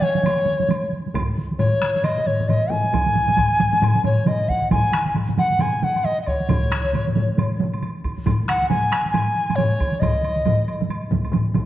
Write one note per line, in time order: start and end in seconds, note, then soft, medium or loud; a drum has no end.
0.01 0.91 C#5 medium
0.01 taiko mid medium
0.01 taiko high soft
0.15 taiko mid medium
0.15 taiko high medium
0.23 taiko mid medium
0.23 taiko high medium
0.23 high woodblock medium
0.46 taiko mid medium
0.46 taiko high medium
0.60 taiko mid medium
0.60 taiko high medium
0.69 taiko mid loud
0.69 taiko high medium
0.69 high woodblock soft
0.93 taiko high soft
1.06 taiko high medium
1.15 taiko medium
1.15 taiko low-mid loud
1.15 taiko high medium
1.15 high woodblock medium
1.37 taiko high medium
1.51 taiko high medium
1.58 2.06 C#5 medium
1.58 taiko low-mid loud
1.58 taiko high medium
1.58 high woodblock soft
1.81 taiko rim medium
1.81 taiko high medium
1.95 taiko high medium
2.03 2.28 D#5 medium
2.03 taiko low-mid medium
2.03 taiko high medium
2.03 high woodblock soft
2.17 taiko low-mid medium
2.26 2.50 C#5 medium
2.26 taiko low-mid medium
2.26 taiko high medium
2.40 taiko low-mid medium
2.40 taiko high medium
2.48 2.73 D#5 medium
2.48 taiko low-mid medium
2.48 taiko high medium
2.48 high woodblock soft
2.70 4.05 G#5 medium
2.70 taiko low-mid loud
2.70 taiko high soft
2.85 taiko high soft
2.93 taiko medium
2.93 taiko low-mid medium
2.93 taiko mid medium
2.93 taiko high medium
2.93 high woodblock soft
3.06 taiko low-mid medium
3.06 taiko mid medium
3.15 taiko low-mid medium
3.15 taiko mid medium
3.15 taiko high soft
3.28 taiko low-mid medium
3.28 taiko mid medium
3.28 taiko high soft
3.37 taiko medium
3.37 taiko low-mid medium
3.37 taiko mid medium
3.37 taiko high medium
3.37 high woodblock soft
3.59 taiko low-mid medium
3.59 taiko mid medium
3.59 taiko high soft
3.73 taiko low-mid medium
3.73 taiko mid medium
3.73 taiko high soft
3.82 taiko low-mid loud
3.82 taiko mid medium
3.82 taiko high medium
3.82 high woodblock soft
3.96 taiko low-mid medium
3.96 taiko mid medium
4.04 4.30 C#5 medium
4.04 taiko low-mid medium
4.04 taiko mid medium
4.04 taiko high medium
4.04 high woodblock soft
4.17 taiko high soft
4.26 4.51 D#5 medium
4.26 taiko low-mid medium
4.26 taiko mid loud
4.26 taiko high medium
4.26 high woodblock soft
4.48 4.71 F#5 medium
4.48 taiko medium
4.48 taiko high soft
4.62 taiko high soft
4.71 5.13 G#5 medium
4.71 taiko medium
4.71 taiko low-mid medium
4.71 taiko mid medium
4.71 taiko high medium
4.71 high woodblock soft
4.93 taiko rim medium
4.93 taiko high soft
4.93 high woodblock soft
5.06 taiko high medium
5.15 taiko low-mid medium
5.15 taiko mid medium
5.15 taiko high medium
5.15 high woodblock soft
5.29 taiko low-mid medium
5.29 taiko mid medium
5.38 5.63 F#5 medium
5.38 taiko low-mid medium
5.38 taiko mid medium
5.38 high woodblock soft
5.51 taiko high soft
5.59 5.85 G#5 medium
5.59 taiko low-mid medium
5.59 taiko mid medium
5.59 taiko high medium
5.59 high woodblock soft
5.82 6.06 F#5 medium
5.82 taiko low-mid medium
5.82 taiko mid medium
5.96 taiko high soft
5.96 high woodblock soft
6.04 6.21 D#5 medium
6.04 taiko high medium
6.04 high woodblock soft
6.22 6.29 D#5 soft
6.26 7.60 C#5 medium
6.26 taiko medium
6.26 high woodblock soft
6.40 taiko high soft
6.49 taiko medium
6.49 taiko low-mid medium
6.49 taiko mid medium
6.49 taiko high medium
6.49 high woodblock soft
6.71 taiko rim medium
6.71 taiko high soft
6.71 high woodblock soft
6.85 taiko high soft
6.93 taiko low-mid medium
6.93 taiko mid medium
6.93 taiko high medium
6.93 high woodblock soft
7.07 taiko low-mid medium
7.07 taiko mid medium
7.16 taiko low-mid medium
7.16 taiko mid medium
7.29 taiko high soft
7.38 taiko low-mid medium
7.38 taiko mid medium
7.38 taiko high medium
7.38 high woodblock soft
7.60 taiko low-mid medium
7.60 taiko mid medium
7.74 taiko high soft
7.74 high woodblock soft
7.83 taiko high medium
7.83 high woodblock soft
8.04 taiko medium
8.04 high woodblock soft
8.18 taiko high soft
8.26 taiko medium
8.26 taiko low-mid loud
8.26 taiko mid medium
8.26 taiko high medium
8.26 high woodblock soft
8.48 8.69 F#5 medium
8.48 taiko rim medium
8.48 taiko high soft
8.48 high woodblock soft
8.62 taiko high soft
8.69 9.10 G#5 medium
8.69 taiko low-mid loud
8.69 taiko mid medium
8.69 taiko high medium
8.69 high woodblock soft
8.91 taiko rim medium
8.91 high woodblock soft
9.06 taiko high soft
9.11 9.57 G#5 medium
9.11 taiko low-mid medium
9.11 taiko mid medium
9.11 taiko high medium
9.11 high woodblock soft
9.50 taiko low-mid medium
9.50 taiko mid medium
9.50 taiko high soft
9.50 high woodblock soft
9.56 10.02 C#5 medium
9.56 taiko low-mid medium
9.56 taiko mid medium
9.56 taiko high medium
9.56 high woodblock soft
9.80 taiko medium
9.80 high woodblock soft
9.93 taiko high medium
10.00 10.89 D#5 medium
10.00 taiko medium
10.00 taiko low-mid medium
10.00 taiko mid medium
10.00 taiko high medium
10.00 high woodblock soft
10.23 taiko high soft
10.23 high woodblock soft
10.37 taiko high medium
10.45 taiko low-mid loud
10.45 taiko mid medium
10.45 taiko high medium
10.45 high woodblock soft
10.68 high woodblock soft
10.80 taiko low-mid medium
10.80 taiko mid medium
10.80 taiko high soft
10.89 taiko high medium
10.89 high woodblock soft
11.11 taiko medium
11.11 taiko low-mid medium
11.11 taiko mid medium
11.24 taiko high soft
11.24 high woodblock soft
11.32 taiko low-mid medium
11.32 taiko mid medium
11.32 taiko high medium
11.32 high woodblock soft
11.54 taiko medium
11.54 taiko low-mid medium
11.54 taiko mid medium
11.54 high woodblock soft